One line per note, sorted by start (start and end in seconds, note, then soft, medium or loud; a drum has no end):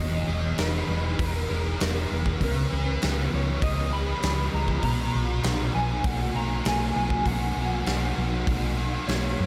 0.00 0.22 E1 loud
0.00 1.49 E2 medium
0.00 0.58 D#5 medium
0.27 0.52 E1 medium
0.27 1.48 G#4 medium
0.58 0.83 E1 medium
0.58 2.10 D#4 medium
0.58 1.20 B4 medium
0.58 snare medium
0.58 open hi-hat medium
0.88 1.13 E1 medium
0.88 2.09 E3 medium
1.19 1.44 E1 medium
1.19 1.80 B3 medium
1.19 1.49 A#4 medium
1.19 kick loud
1.19 open hi-hat medium
1.49 1.75 E1 medium
1.49 2.40 G#4 medium
1.49 2.43 A#4 medium
1.80 2.05 E1 medium
1.80 2.43 B3 medium
1.80 snare loud
1.80 open hi-hat medium
2.10 2.35 E1 medium
2.10 2.40 E3 medium
2.26 kick medium
2.40 2.65 C#2 medium
2.40 3.92 C#3 medium
2.40 2.54 A#4 medium
2.40 kick medium
2.40 open hi-hat medium
2.54 3.35 B4 medium
2.70 2.96 C#2 medium
2.70 3.91 G#4 medium
3.01 3.27 C#2 medium
3.01 4.55 B3 medium
3.01 snare loud
3.01 open hi-hat soft
3.31 3.57 C#2 medium
3.31 4.51 F3 medium
3.31 3.62 C#5 medium
3.61 4.12 C#2 medium
3.61 4.21 G#3 medium
3.61 3.92 D#5 medium
3.61 kick loud
3.61 open hi-hat medium
3.92 4.83 G#4 medium
3.92 4.54 B5 loud
4.22 4.48 C#2 medium
4.22 4.83 G#3 medium
4.22 snare loud
4.22 open hi-hat medium
4.52 4.78 C#2 medium
4.52 4.83 F3 medium
4.52 4.83 A#5 medium
4.68 kick medium
4.82 5.08 B1 medium
4.82 6.35 B2 medium
4.82 5.74 A#5 medium
4.82 kick medium
4.82 open hi-hat medium
5.13 5.39 B1 medium
5.13 6.34 F#4 medium
5.43 5.69 B1 medium
5.43 7.86 D#4 medium
5.43 snare loud
5.43 open hi-hat soft
5.73 6.00 B1 medium
5.73 6.94 F#3 medium
5.73 6.06 G#5 medium
6.04 6.29 B1 medium
6.04 6.64 A#3 medium
6.04 6.36 F#5 loud
6.04 kick loud
6.04 open hi-hat medium
6.35 6.60 B1 medium
6.35 7.55 F#4 medium
6.35 6.67 A#5 medium
6.65 6.90 B1 medium
6.65 8.17 A#3 medium
6.65 6.95 G#5 medium
6.65 snare loud
6.65 open hi-hat medium
6.95 7.21 B1 medium
6.95 8.14 F#3 medium
6.95 7.27 G#5 medium
7.10 kick medium
7.25 7.51 B1 medium
7.25 8.78 B2 medium
7.25 9.15 F#5 medium
7.25 kick medium
7.25 open hi-hat medium
7.56 7.81 B1 medium
7.56 8.76 F#4 medium
7.86 8.11 B1 medium
7.86 9.39 D#4 medium
7.86 snare loud
7.86 open hi-hat medium
8.16 8.42 B1 medium
8.16 9.37 F#3 medium
8.46 8.97 B1 medium
8.46 9.05 A#3 medium
8.46 kick loud
8.46 open hi-hat medium
8.77 9.46 F#4 medium
9.07 9.33 B1 medium
9.07 9.46 A#3 medium
9.07 9.46 C#5 medium
9.07 snare loud
9.07 open hi-hat soft
9.38 9.46 F#2 medium
9.38 9.46 F#3 medium